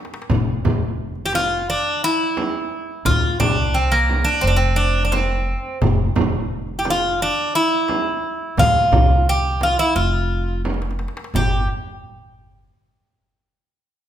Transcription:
0.05 darbuka ka medium
0.14 darbuka tek medium
0.22 darbuka ka medium
0.30 0.58 F1 medium
0.30 frame drum medium
0.30 darbuka dum medium
0.65 1.74 F1 medium
0.65 darbuka dum medium
0.65 frame drum medium
0.82 darbuka ka soft
1.15 darbuka ka soft
1.26 1.33 G4 medium
1.32 1.69 F4 medium
1.32 darbuka tek medium
1.32 frame drum medium
1.70 2.04 D4 medium
2.04 3.05 E4 medium
2.37 darbuka tek medium
2.37 frame drum medium
2.73 darbuka ka soft
3.05 3.34 D2 medium
3.05 3.39 F4 medium
3.05 frame drum medium
3.05 darbuka dum medium
3.40 4.22 C2 medium
3.40 3.76 D4 medium
3.40 darbuka dum medium
3.40 frame drum medium
3.58 darbuka ka soft
3.74 3.93 C4 medium
3.92 4.28 A#3 medium
3.92 darbuka ka soft
4.09 frame drum medium
4.24 4.44 D4 medium
4.41 5.52 F1 medium
4.41 4.50 C4 medium
4.47 4.56 D4 medium
4.56 4.79 C4 medium
4.76 5.03 D4 medium
5.05 5.12 D4 medium
5.12 5.78 C4 medium
5.12 darbuka tek medium
5.12 frame drum medium
5.48 darbuka ka soft
5.82 6.09 F1 medium
5.82 darbuka dum medium
5.82 frame drum medium
6.16 7.25 F1 medium
6.16 darbuka dum medium
6.16 frame drum medium
6.34 darbuka ka soft
6.68 darbuka ka soft
6.79 6.86 G4 medium
6.85 darbuka tek medium
6.85 frame drum medium
6.90 7.22 F4 medium
7.20 7.55 D4 medium
7.20 darbuka ka soft
7.55 8.59 E4 medium
7.88 darbuka tek medium
7.88 frame drum medium
8.23 darbuka ka soft
8.57 8.85 D2 medium
8.57 9.29 F4 medium
8.57 darbuka dum medium
8.57 frame drum medium
8.92 9.74 C2 medium
8.92 darbuka dum medium
8.92 frame drum medium
9.09 darbuka ka soft
9.26 9.63 G4 medium
9.26 darbuka ka soft
9.43 darbuka ka soft
9.61 9.79 F4 medium
9.61 darbuka tek medium
9.61 frame drum medium
9.79 9.95 E4 medium
9.96 11.04 F1 medium
9.96 10.61 F4 medium
10.30 darbuka ka soft
10.48 darbuka ka soft
10.65 darbuka tek soft
10.65 frame drum medium
10.74 darbuka ka medium
10.82 darbuka tek medium
10.91 darbuka ka medium
10.99 darbuka tek medium
11.08 darbuka ka medium
11.17 darbuka tek medium
11.24 darbuka ka medium
11.34 11.66 G1 medium
11.34 11.67 G4 medium
11.34 darbuka dum medium
11.34 frame drum medium

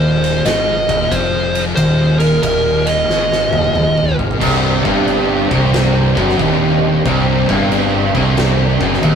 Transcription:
0.00 0.41 D#1 loud
0.00 0.44 D#2 loud
0.00 4.38 D#3 medium
0.00 4.38 G#3 medium
0.00 4.38 F4 medium
0.00 0.48 C5 loud
0.24 ride medium
0.45 0.86 G#1 medium
0.45 0.87 G#2 medium
0.45 1.14 D#5 loud
0.45 snare loud
0.45 ride medium
0.88 1.10 D#1 medium
0.88 1.12 D#2 loud
0.88 kick loud
0.88 ride medium
1.11 1.74 F1 medium
1.11 1.77 F2 loud
1.11 1.62 C5 medium
1.11 kick loud
1.11 ride medium
1.55 ride medium
1.76 2.40 D#1 loud
1.76 2.42 D#2 loud
1.76 2.19 C5 loud
1.76 kick loud
1.76 ride medium
2.19 2.42 A#4 medium
2.19 ride medium
2.43 3.06 D#1 medium
2.43 3.08 D#2 loud
2.43 2.88 A#4 medium
2.43 kick loud
2.43 ride loud
2.86 4.15 D#5 medium
2.86 ride medium
3.08 3.49 G#1 medium
3.08 3.51 G#2 medium
3.08 snare medium
3.32 snare medium
3.52 3.74 D#1 medium
3.52 3.73 D#2 loud
3.52 high tom medium
3.64 high tom medium
3.74 4.16 D#1 medium
3.74 4.17 D#2 medium
3.74 mid tom medium
3.97 mid tom medium
4.19 4.40 G#1 medium
4.19 4.41 G#2 loud
4.19 floor tom medium
4.31 floor tom medium
4.41 4.82 C1 medium
4.41 4.85 C2 loud
4.41 9.15 C3 medium
4.41 9.15 D4 medium
4.41 9.15 G4 medium
4.41 kick loud
4.41 crash loud
4.41 crash medium
4.85 5.47 G1 loud
4.85 5.50 G2 loud
4.85 kick loud
5.08 crash medium
5.51 6.13 C1 medium
5.51 6.16 C2 loud
5.51 kick loud
5.73 snare loud
5.73 crash medium
6.17 6.38 F#1 medium
6.17 6.37 F#2 loud
6.17 kick loud
6.29 snare soft
6.38 7.02 D#1 medium
6.38 7.04 D#2 loud
6.38 kick loud
6.38 crash medium
7.05 7.46 C1 medium
7.05 7.47 C2 loud
7.05 kick loud
7.05 crash medium
7.48 8.11 G1 loud
7.48 8.13 G2 loud
7.48 kick loud
7.71 crash medium
8.15 8.77 C1 medium
8.15 8.79 C2 loud
8.15 kick loud
8.37 snare loud
8.37 crash medium
8.81 9.02 F#1 loud
8.81 9.01 F#2 loud
8.81 kick loud
8.93 snare soft
9.02 9.15 D#1 medium
9.02 9.15 D#2 loud
9.02 kick loud
9.02 crash medium

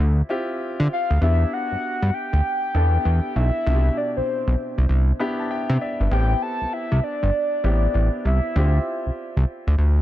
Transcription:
0.00 0.22 D2 medium
0.00 0.29 C4 medium
0.00 0.30 E4 medium
0.00 0.30 F4 medium
0.00 0.30 G4 medium
0.29 1.18 C4 medium
0.29 1.18 E4 medium
0.29 1.18 F4 medium
0.29 1.18 G4 medium
0.80 0.88 D3 loud
0.93 1.20 F5 loud
1.10 1.19 D2 medium
1.21 1.45 E2 loud
1.21 2.39 B3 medium
1.21 2.39 D4 medium
1.21 2.39 E4 medium
1.21 2.39 G4 medium
1.21 1.55 E5 loud
1.53 2.15 F#5 loud
1.72 1.76 G2 medium
2.02 2.11 G2 medium
2.14 3.38 G5 loud
2.33 2.41 D2 medium
2.75 2.98 E2 medium
2.75 3.63 B3 medium
2.75 3.63 D4 medium
2.75 3.63 E4 medium
2.75 3.63 A4 medium
3.05 3.20 E2 medium
3.36 3.51 B1 medium
3.36 3.99 E5 loud
3.66 3.90 C2 loud
3.66 4.84 B2 medium
3.66 4.84 D4 medium
3.66 4.85 E4 medium
3.66 3.75 F4 medium
3.74 4.88 G4 medium
3.97 4.16 D5 medium
4.17 4.21 B1 medium
4.17 4.74 C5 medium
4.47 4.56 B1 medium
4.78 4.86 C2 loud
4.89 5.12 C2 loud
5.19 6.08 B3 medium
5.19 6.08 D4 medium
5.19 6.08 E4 medium
5.19 6.08 G4 loud
5.19 5.38 B5 medium
5.40 5.49 A5 medium
5.51 5.79 E5 medium
5.51 5.79 G5 medium
5.69 5.78 C3 loud
5.81 5.99 D5 medium
5.81 6.09 E5 medium
6.00 6.08 G1 medium
6.00 6.30 B4 medium
6.11 6.34 A1 loud
6.11 7.29 B3 medium
6.11 7.29 C4 medium
6.11 7.29 E4 medium
6.11 7.30 G4 medium
6.11 6.44 G5 loud
6.42 6.75 A5 loud
6.61 6.66 C2 medium
6.73 7.05 E5 loud
6.92 7.00 C2 medium
7.04 8.26 D5 loud
7.23 7.31 G1 loud
7.64 7.87 A1 medium
7.64 8.52 B3 medium
7.64 8.52 C4 medium
7.64 8.53 E4 medium
7.64 8.53 G4 medium
7.94 8.09 A1 medium
8.25 8.40 C2 medium
8.25 9.14 E5 medium
8.56 8.79 D2 loud
8.56 9.74 C4 medium
8.56 9.74 E4 medium
8.56 9.74 F4 medium
8.56 9.74 G4 medium
9.06 9.10 C2 medium
9.37 9.45 C2 medium
9.67 9.76 D2 loud
9.78 10.01 D2 medium

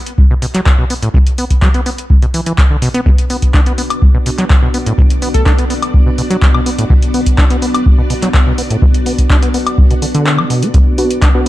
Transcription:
0.06 closed hi-hat medium
0.18 kick loud
0.31 0.34 B2 medium
0.42 0.46 B2 medium
0.42 open hi-hat loud
0.55 0.61 F#3 loud
0.55 clap soft
0.55 closed hi-hat medium
0.66 kick loud
0.66 clap loud
0.79 0.85 B2 medium
0.90 0.94 B3 medium
0.90 open hi-hat loud
1.03 1.09 A2 medium
1.03 closed hi-hat medium
1.14 1.18 B2 loud
1.14 kick loud
1.27 closed hi-hat soft
1.38 1.45 B3 medium
1.38 open hi-hat loud
1.50 kick medium
1.50 closed hi-hat medium
1.62 1.69 F#3 loud
1.62 kick loud
1.62 clap loud
1.74 1.81 B3 medium
1.74 closed hi-hat soft
1.86 1.90 B3 medium
1.86 open hi-hat loud
1.98 closed hi-hat medium
2.10 kick loud
2.22 2.26 B2 medium
2.22 closed hi-hat soft
2.34 2.41 E3 medium
2.34 open hi-hat loud
2.46 2.53 E3 medium
2.46 closed hi-hat medium
2.58 kick loud
2.58 clap loud
2.71 2.77 D3 medium
2.82 2.89 B2 loud
2.82 open hi-hat loud
2.94 3.01 B3 loud
2.94 closed hi-hat medium
3.06 3.10 B2 loud
3.06 10.70 B3 medium
3.06 10.70 D4 medium
3.06 10.70 F#4 medium
3.06 10.70 D5 medium
3.06 kick loud
3.18 closed hi-hat soft
3.30 3.37 B3 medium
3.30 open hi-hat loud
3.42 kick medium
3.42 closed hi-hat medium
3.54 3.61 D4 loud
3.54 kick loud
3.54 clap loud
3.66 3.73 B3 medium
3.66 closed hi-hat soft
3.78 3.82 B3 medium
3.78 open hi-hat loud
3.90 closed hi-hat medium
3.90 high woodblock medium
4.02 kick loud
4.14 4.18 B2 medium
4.26 4.30 B2 medium
4.26 open hi-hat loud
4.38 4.45 F#3 loud
4.38 clap soft
4.38 closed hi-hat medium
4.50 kick loud
4.50 clap loud
4.63 4.69 B2 medium
4.74 4.78 B3 medium
4.74 open hi-hat loud
4.86 4.93 A2 medium
4.86 closed hi-hat medium
4.98 5.02 B2 loud
4.98 kick loud
5.10 closed hi-hat medium
5.22 5.29 B3 medium
5.22 open hi-hat loud
5.34 5.42 A4 medium
5.34 kick medium
5.34 closed hi-hat medium
5.46 5.53 D4 loud
5.46 5.54 A4 medium
5.46 kick loud
5.46 clap loud
5.58 5.65 B3 medium
5.58 closed hi-hat soft
5.70 5.74 B3 medium
5.70 open hi-hat loud
5.82 closed hi-hat medium
5.82 high woodblock medium
5.94 kick loud
6.06 6.10 B2 medium
6.18 6.22 B2 medium
6.18 open hi-hat loud
6.30 6.37 F#3 loud
6.30 closed hi-hat medium
6.42 kick loud
6.42 clap loud
6.54 6.61 B2 medium
6.54 high woodblock medium
6.66 6.70 B3 medium
6.66 open hi-hat loud
6.78 6.85 A2 medium
6.78 closed hi-hat medium
6.90 6.94 B2 loud
6.90 kick loud
7.02 closed hi-hat medium
7.14 7.21 B3 medium
7.14 open hi-hat medium
7.26 kick medium
7.26 closed hi-hat medium
7.38 7.45 D4 loud
7.38 kick loud
7.38 clap loud
7.50 7.57 B3 medium
7.50 closed hi-hat medium
7.62 7.66 B3 medium
7.62 open hi-hat medium
7.74 closed hi-hat medium
7.74 high woodblock medium
7.86 kick loud
7.98 8.02 B2 medium
8.10 8.14 B2 medium
8.10 open hi-hat loud
8.22 8.29 F#3 loud
8.22 clap soft
8.22 closed hi-hat medium
8.34 kick loud
8.34 clap loud
8.46 8.53 B2 medium
8.58 8.62 B3 medium
8.58 open hi-hat loud
8.70 8.77 A2 medium
8.70 closed hi-hat medium
8.82 8.86 B2 loud
8.82 kick loud
8.94 closed hi-hat medium
9.06 9.13 B3 medium
9.06 open hi-hat loud
9.18 kick medium
9.18 closed hi-hat medium
9.30 9.37 D4 loud
9.30 kick loud
9.30 clap loud
9.42 9.49 B3 medium
9.42 closed hi-hat medium
9.54 9.58 B3 medium
9.54 open hi-hat medium
9.67 closed hi-hat medium
9.67 high woodblock medium
9.78 kick loud
9.91 9.94 B2 medium
9.91 closed hi-hat soft
10.02 10.06 D3 medium
10.02 open hi-hat loud
10.15 10.40 D3 loud
10.15 closed hi-hat medium
10.27 clap loud
10.38 10.45 F#3 medium
10.38 high woodblock medium
10.50 10.64 B2 medium
10.50 open hi-hat loud
10.62 10.69 B3 loud
10.62 closed hi-hat medium
10.74 10.78 B2 loud
10.74 11.48 B3 medium
10.74 11.48 D4 medium
10.74 11.48 F#4 medium
10.74 11.48 D5 medium
10.74 kick loud
10.74 closed hi-hat medium
10.98 11.05 B3 medium
10.98 11.07 B3 medium
10.98 11.07 D4 medium
10.98 11.07 F#4 loud
10.98 open hi-hat loud
11.11 closed hi-hat medium
11.22 11.29 D4 loud
11.22 kick loud
11.22 clap loud
11.22 closed hi-hat medium
11.34 11.48 B3 medium
11.34 11.41 B3 medium
11.34 11.48 D4 medium
11.34 11.48 F#4 loud

